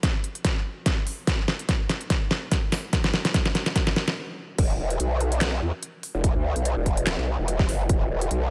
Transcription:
0.03 kick, snare, closed hi-hat
0.24 closed hi-hat
0.35 closed hi-hat
0.45 kick, snare, closed hi-hat
0.86 kick, snare, closed hi-hat
1.07 open hi-hat
1.27 kick, snare, closed hi-hat
1.48 snare
1.59 closed hi-hat
1.69 kick, snare, closed hi-hat
1.89 snare, closed hi-hat
2.01 closed hi-hat
2.10 kick, snare, closed hi-hat
2.31 snare
2.52 kick, snare, closed hi-hat
2.72 snare, open hi-hat
2.93 kick, snare, closed hi-hat
3.04 snare
3.14 snare
3.25 snare, closed hi-hat
3.34 kick, snare, closed hi-hat
3.46 snare
3.55 snare, closed hi-hat
3.66 snare, closed hi-hat
3.76 kick, snare, closed hi-hat
3.87 snare
3.96 snare
4.08 snare
4.58 wobble bass E1, kick, closed hi-hat, crash
4.79 wobble bass E1
4.90 closed hi-hat
5.00 wobble bass B1, closed hi-hat
5.20 closed hi-hat
5.32 closed hi-hat
5.41 snare, clap, closed hi-hat
5.62 wobble bass E2
5.83 closed hi-hat
6.03 open hi-hat
6.15 wobble bass E1
6.24 kick, closed hi-hat
6.35 wobble bass D2
6.56 wobble bass B1, closed hi-hat
6.65 closed hi-hat
6.76 wobble bass E1
6.86 kick, closed hi-hat
6.97 closed hi-hat
7.07 snare, clap, closed hi-hat
7.18 wobble bass B1
7.39 wobble bass E1
7.48 closed hi-hat
7.59 kick, snare
7.69 wobble bass F#1, open hi-hat
7.89 wobble bass E1, kick, closed hi-hat
8.10 wobble bass E1
8.21 closed hi-hat
8.31 wobble bass B1, closed hi-hat

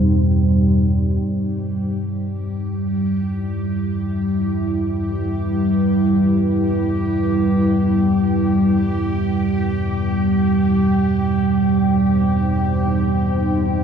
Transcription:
Already playing: synth drone E2 B2, ambient pad G3 D#4 C5 G5
1.27 synth drone E2 B2, synth texture G4
2.22 ambient pad E4
3.82 ambient pad G5
4.43 ambient pad B4
10.74 ambient pad C5
10.89 ambient pad D#4

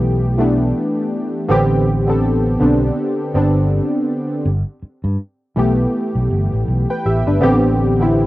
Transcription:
Already playing: fingered electric bass B1, synth keys E3 A3 B3 G4
0.38 synth keys E3 A3 B3 D4
1.48 fingered electric bass A1, synth keys D3 B3 C4 G4
2.07 synth keys D3 B3 C4 A4
2.60 fingered electric bass B1, synth keys D3 B3 C4 D4
3.34 fingered electric bass G1, synth keys D3 B3 C4 D4
4.46 fingered electric bass G1
4.83 muted fingered electric bass stroke
5.04 fingered electric bass G2
5.56 fingered electric bass B1, synth keys E3 A3 B3 G4
6.15 fingered electric bass B1
6.31 fingered electric bass G1
6.53 fingered electric bass A1
6.68 fingered electric bass B1
6.90 synth keys B4 G5
7.05 fingered electric bass A1, synth keys G4 E5
7.27 fingered electric bass G1, synth keys D4 B4
7.41 fingered electric bass A1, synth keys D3 B3 C4 G4
8.00 synth keys D3 B3 C4 E4

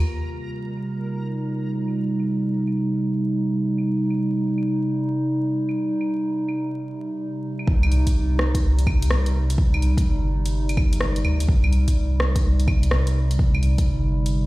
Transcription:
Already playing: ambient pad A#3 F4 G4
0.05 ambient pad C3
0.17 ambient pad G3
0.29 claves
0.77 claves
0.94 ambient pad D#4
1.88 claves
2.20 claves
2.67 claves
3.78 claves
4.10 claves
4.58 claves
5.69 claves
6.01 claves
6.48 claves
7.59 claves
7.68 sub bass C2, kick
7.83 claves
7.92 closed hi-hat
8.07 kick, closed hi-hat
8.39 cross-stick
8.55 kick, closed hi-hat
8.63 sub bass C2
8.79 closed hi-hat
8.87 sub bass C2, kick, claves
9.02 closed hi-hat
9.11 cross-stick
9.26 closed hi-hat
9.50 closed hi-hat
9.58 kick
9.74 claves
9.82 closed hi-hat
9.97 kick, closed hi-hat
10.06 sub bass G1
10.46 closed hi-hat
10.69 closed hi-hat, claves
10.77 kick, claves
10.93 closed hi-hat
11.01 cross-stick
11.16 closed hi-hat
11.25 sub bass D2, claves
11.40 closed hi-hat
11.49 sub bass C2, kick
11.64 claves
11.73 closed hi-hat
11.88 kick, closed hi-hat
12.20 cross-stick
12.36 kick, closed hi-hat
12.44 sub bass C2
12.60 closed hi-hat
12.68 sub bass C2, kick, claves
12.83 closed hi-hat
12.91 cross-stick
13.07 closed hi-hat
13.31 closed hi-hat
13.39 kick
13.55 claves
13.63 closed hi-hat
13.78 kick, closed hi-hat
13.87 sub bass G1
14.26 closed hi-hat

